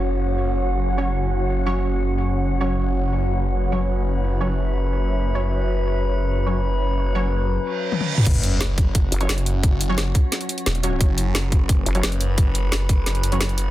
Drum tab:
CC |----------------|----------------|----------------|----------------|
HH |----------------|----------------|----------------|----------------|
SD |----------------|----------------|----------------|----------------|
T1 |----------------|----------------|----------------|----------------|
T2 |----------------|----------------|----------------|----------------|
BD |----------------|----------------|----------------|----------------|

CC |----------------|----------------|x---------------|----------------|
HH |----------------|----------------|x-x-x-x-x-xxxxx-|x-x-x-x-xxxxxxx-|
SD |----------------|----------------|----o-------o---|----o---o---o---|
T1 |----------------|------------oo--|----------------|----------------|
T2 |----------------|---------------o|----------------|----------------|
BD |----------------|----------------|o-----o-o-------|o-----o---------|

CC |----------------|----------------|
HH |x-x-x-x-x-xxxxx-|x-x-x-x-xxxxxxx-|
SD |----o-------o---|----o---o---o---|
T1 |----------------|----------------|
T2 |----------------|----------------|
BD |o-----o-o-------|o-----o---------|